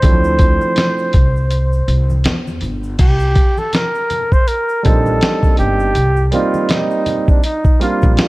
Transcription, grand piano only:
0.02 0.10 E3 soft
0.02 1.08 A3 medium
0.02 1.08 C4 medium
0.02 1.09 D4 medium
0.02 1.09 E4 medium
0.09 1.11 F3 medium
4.83 5.89 G3 medium
4.83 5.89 A#3 medium
4.83 5.89 C4 medium
4.83 5.90 D4 medium
4.83 5.90 D#4 medium
6.31 7.37 G3 medium
6.31 7.37 A#3 medium
6.31 7.38 C4 medium
6.31 7.38 D#4 medium
6.31 7.38 D5 medium
7.79 8.28 G3 medium
7.79 8.28 A#3 medium
7.79 8.28 C4 medium
7.79 8.28 D4 medium
7.79 8.28 F4 medium

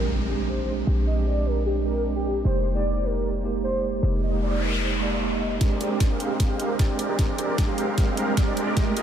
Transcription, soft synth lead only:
0.00 0.13 A#4 medium
0.48 0.72 C5 medium
1.07 1.23 D#5 medium
1.27 1.48 D5 medium
1.46 1.62 A#4 medium
1.66 1.82 G4 medium
1.86 2.10 A#4 loud
2.16 2.40 G4 loud
2.45 2.69 C5 loud
2.75 3.06 D5 medium
3.04 3.28 A#4 loud
3.64 3.88 C5 loud
4.23 4.39 D#5 medium
4.42 4.64 D5 medium
4.62 4.84 A#4 medium
4.82 4.98 C5 medium
5.02 5.26 D5 medium
5.31 5.55 D#5 loud

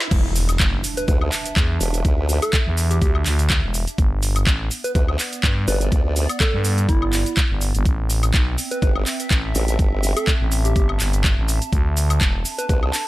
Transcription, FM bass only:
0.11 0.58 E1 loud
0.60 0.82 F#1 loud
1.56 1.79 E2 loud
2.67 3.00 E2 medium
3.02 3.24 D2 loud
3.26 3.61 D2 loud
3.63 3.85 E1 medium
3.98 4.45 G1 loud
4.47 4.69 A1 loud
5.44 5.66 G2 loud
6.54 6.87 G2 medium
6.89 7.24 G1 medium
7.50 7.73 G1 medium
7.75 7.84 G1 loud
7.85 8.32 A1 loud
8.34 8.56 B1 loud
9.31 9.53 A1 medium
10.41 10.74 A1 loud
10.76 10.98 G1 loud
11.00 11.35 G1 loud
11.38 11.60 A1 medium
11.73 12.19 D2 loud
12.21 12.43 E1 medium

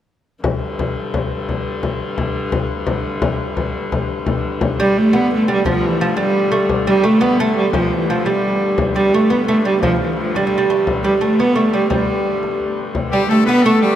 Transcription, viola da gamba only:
4.81 4.99 G3 medium
4.98 5.17 A3 medium
5.16 5.32 B3 loud
5.34 5.49 A3 medium
5.52 5.66 G3 medium
5.69 5.87 F3 medium
5.86 6.03 E3 medium
6.01 6.18 F3 medium
6.19 6.67 G3 medium
6.87 7.07 G3 loud
7.05 7.24 A3 medium
7.22 7.41 B3 medium
7.40 7.56 A3 medium
7.56 7.73 G3 medium
7.74 7.94 F3 medium
7.92 8.11 E3 medium
8.10 8.27 F3 medium
8.25 8.78 G3 medium
8.95 9.14 G3 medium
9.13 9.32 A3 medium
9.30 9.47 B3 medium
9.48 9.64 A3 medium
9.65 9.81 G3 medium
9.82 9.98 F3 medium
10.00 10.16 E3 medium
10.17 10.36 F3 medium
10.35 10.87 G3 medium
11.04 11.20 G3 medium
11.22 11.41 A3 medium
11.39 11.58 B3 medium
11.56 11.73 A3 medium
11.73 11.89 G3 medium
11.91 12.56 G3 medium
13.12 13.28 G3 medium
13.28 13.45 A3 medium
13.47 13.65 B3 loud
13.64 13.83 A3 medium
13.82 13.96 G3 medium

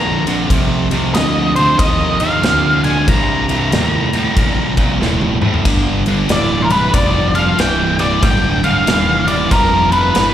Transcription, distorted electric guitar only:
0.00 0.22 F2 medium
0.00 0.23 D3 medium
0.26 0.48 F2 medium
0.26 0.48 D3 medium
0.50 0.87 F2 medium
0.50 0.87 C3 medium
0.91 1.12 F2 medium
0.91 1.13 C3 medium
1.15 1.52 F2 medium
1.15 1.52 D3 medium
1.56 1.77 F2 medium
1.56 1.77 D3 medium
1.80 2.16 F2 medium
1.80 2.16 D#3 medium
2.21 2.42 F2 medium
2.21 2.42 D#3 medium
2.44 2.80 F2 medium
2.44 2.80 D3 medium
2.85 3.06 F2 medium
2.85 3.06 D3 medium
3.08 3.45 C2 medium
3.08 3.45 G2 medium
3.48 3.70 C2 medium
3.48 3.70 G2 medium
3.73 4.09 C2 medium
3.73 4.10 A2 medium
4.13 4.34 C2 medium
4.13 4.35 A2 medium
4.36 4.73 C2 medium
4.36 4.73 A#2 medium
4.78 4.98 C2 medium
4.78 4.99 A#2 medium
5.00 5.37 C2 medium
5.00 5.37 A2 medium
5.41 5.63 C2 medium
5.41 5.63 A2 medium
5.65 6.02 G2 medium
5.65 6.02 D3 medium
6.07 6.28 G2 medium
6.07 6.28 D3 medium
6.29 6.66 G2 medium
6.29 6.67 E3 loud
6.70 6.91 G2 medium
6.70 6.92 E3 medium
6.93 7.30 G2 medium
6.93 7.31 F3 medium
7.34 7.56 G2 medium
7.34 7.56 F3 medium
7.58 7.95 G2 medium
7.58 7.95 E3 medium
7.99 8.20 G2 medium
7.99 8.20 E3 medium
8.22 8.59 G2 medium
8.22 8.59 D3 medium
8.63 8.85 G2 medium
8.63 8.85 D3 medium
8.87 9.24 G2 medium
8.87 9.24 E3 loud
9.27 9.48 G2 medium
9.27 9.49 E3 medium
9.51 9.88 G2 medium
9.51 9.88 F3 medium
9.92 10.13 G2 medium
9.92 10.13 F3 medium
10.15 10.34 G2 medium
10.15 10.34 E3 medium

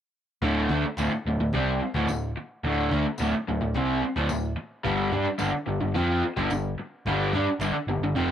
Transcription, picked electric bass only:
0.42 0.68 D1 medium
0.69 0.82 D2 loud
0.84 muted picked electric bass stroke soft
0.97 1.09 D1 medium
1.10 muted picked electric bass stroke soft
1.25 1.38 D1 medium
1.38 1.52 D1 medium
1.53 1.79 C2 medium
1.94 2.07 D1 loud
2.37 muted picked electric bass stroke soft
2.64 2.89 D1 loud
2.92 3.04 D2 loud
3.20 3.32 D1 loud
3.35 muted picked electric bass stroke soft
3.48 3.61 D1 medium
3.62 3.74 D1 medium
3.74 4.00 C2 medium
4.16 4.29 D1 medium
4.31 4.56 D1 medium
4.58 muted picked electric bass stroke soft
4.85 5.11 G1 loud
5.12 5.25 G2 loud
5.26 muted picked electric bass stroke soft
5.40 5.53 G1 medium
5.54 muted picked electric bass stroke soft
5.67 5.81 G1 medium
5.82 5.95 G1 medium
5.95 6.21 F2 medium
6.23 muted picked electric bass stroke soft
6.37 6.50 G1 loud
6.51 6.77 G1 medium
6.77 muted picked electric bass stroke soft
7.05 7.31 G1 loud
7.33 7.46 G2 medium
7.46 muted picked electric bass stroke soft
7.59 7.73 G1 loud
7.73 muted picked electric bass stroke soft
7.87 7.99 G1 medium
7.99 8.14 G1 medium
8.16 8.31 F1 medium

